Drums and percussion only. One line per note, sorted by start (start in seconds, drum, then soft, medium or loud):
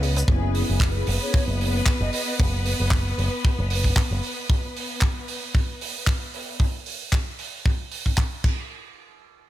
0.03 open hi-hat loud
0.16 closed hi-hat medium
0.16 shaker medium
0.28 kick loud
0.55 open hi-hat loud
0.80 kick loud
0.80 clap loud
1.07 open hi-hat loud
1.34 kick loud
1.61 open hi-hat loud
1.86 kick loud
1.86 clap loud
2.13 open hi-hat loud
2.40 kick loud
2.66 open hi-hat loud
2.91 kick loud
2.91 clap loud
3.19 open hi-hat loud
3.45 kick loud
3.70 open hi-hat loud
3.84 kick medium
3.96 kick loud
3.96 clap loud
4.23 open hi-hat loud
4.50 kick loud
4.76 open hi-hat loud
5.01 kick loud
5.01 clap loud
5.28 open hi-hat loud
5.55 kick loud
5.81 open hi-hat loud
6.07 kick loud
6.07 clap loud
6.34 open hi-hat loud
6.60 kick loud
6.86 open hi-hat loud
7.12 kick loud
7.12 clap loud
7.39 open hi-hat medium
7.66 kick loud
7.92 open hi-hat medium
8.06 kick medium
8.17 kick loud
8.17 clap loud
8.44 kick loud
8.44 crash medium